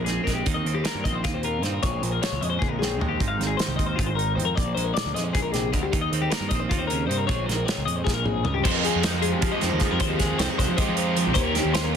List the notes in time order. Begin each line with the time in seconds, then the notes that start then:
Already playing: A#1 F2 F3 G#3 F4
0.05 G#4, snare, closed hi-hat
0.09 C4
0.24 A#1 G#3 A#4, kick, closed hi-hat
0.28 snare
0.34 G4
0.46 D#2 D#3, kick, closed hi-hat
0.54 D#5
0.65 D#2 C4, closed hi-hat
0.75 G4
0.84 A#3 A#4, snare, closed hi-hat
0.95 G2
1.04 A#1 C4 D#5, kick, closed hi-hat
1.15 C5
1.24 D#2 A#2 F4, kick, snare, closed hi-hat
1.34 C5
1.43 F4 A#4, closed hi-hat
1.62 G2 C4 C5, snare, closed hi-hat
1.72 A#4
1.83 A#1 A#2 F3 G#3 C#5, kick, closed hi-hat
1.87 C4 G#4
2.02 A#1 G#3 C5, closed hi-hat
2.12 A#4
2.22 F3 C#5, snare, closed hi-hat
2.32 C#2
2.41 F2 G#3 D#5, closed hi-hat
2.50 C5
2.59 A#1 F2 G#4, kick, high tom
2.68 A#4
2.79 G#4, snare
2.84 C4
2.99 D#2 G#3 A#4, floor tom
3.09 G4
3.19 G#1 G#2 D#3 C4 D#4 F4, kick, closed hi-hat
3.28 F5
3.40 G#1 C4, snare, closed hi-hat
3.47 G#4
3.57 D#3 C5, snare, closed hi-hat
3.68 C2
3.76 D#2 C4 D#5, kick, closed hi-hat
3.86 C5
3.96 G#2 F4, kick, closed hi-hat
4.00 G#1
4.06 C5
4.15 D#4 A#4, closed hi-hat
4.35 F2 C4 C5
4.40 closed hi-hat
4.45 A#4
4.55 A#1 A#2 D5, kick, closed hi-hat
4.75 A#1 G#3 C5, closed hi-hat
4.84 A#4
4.94 F3 D5, snare, closed hi-hat
5.06 D2
5.15 F2 G#3 D#5, snare, closed hi-hat
5.24 C5
5.33 A#1 A#2 G#4, kick, closed hi-hat
5.42 A#4
5.52 C3 G#4, snare, closed hi-hat
5.72 D2 D3 A#4, kick, closed hi-hat
5.83 G4
5.92 D#2 D#3, kick, closed hi-hat
6.01 D#5
6.12 D#2 C4, closed hi-hat
6.22 G4
6.30 A#3 A#4, snare, closed hi-hat
6.40 G2
6.49 A#1 D#5, kick, closed hi-hat
6.55 C4
6.60 C5
6.69 D#2 D#3 F4, kick, closed hi-hat
6.79 C5
6.87 C#3 A#4, closed hi-hat
7.07 G2 C3 C5, closed hi-hat
7.18 A#4
7.27 A#1 A#2 F3 G#3 C#5, kick, closed hi-hat
7.31 C4 G#4
7.46 A#1 G#3 C5, closed hi-hat
7.50 snare
7.55 A#4
7.65 F3 C#5, snare, closed hi-hat
7.78 C#2
7.86 F2 G#3 D#5, closed hi-hat
7.96 C5
8.04 A#1 A#2 G#4, kick, snare
8.14 A#4
8.24 G#2 G#4, mid tom
8.45 C#2 G2 A#4, floor tom
8.54 G4
8.63 F2 F3 G#3 C4 F4 C5, kick, crash
8.74 A#4
8.84 G#3 G#4, closed hi-hat
8.96 F2
9.03 D#4 C5, snare, closed hi-hat
9.12 A#4
9.22 G#3 G#4, closed hi-hat
9.32 G4
9.42 F3 G#3 C4 F4, kick, closed hi-hat
9.52 G4 D#5
9.61 F2 C4 C5, snare, closed hi-hat
9.70 D#2 D#4
9.79 F3 G#4, kick, snare, closed hi-hat
9.91 F2 A#4
9.99 D#2 F2 F3 G#3 C4 F4 C5, kick, closed hi-hat
10.10 G4
10.19 G#3 G#4, kick, snare, closed hi-hat
10.38 C2 C4 C5, snare, closed hi-hat
10.49 D#4 G#4
10.58 C2 G#3 C5, kick, snare, closed hi-hat
10.68 F3
10.77 F3 G#3 C4 F4 G4 D#5, kick, closed hi-hat
10.88 F3
10.96 D#4 C5, closed hi-hat
11.15 F3 G#4, closed hi-hat
11.24 C2 G4
11.33 D#2 D#3 A#3 C#4 G4 C5, kick, closed hi-hat
11.44 A#4
11.55 C4 G4, snare, closed hi-hat
11.65 D#2
11.74 F4 C5, snare, closed hi-hat
11.84 A#4
11.93 G#4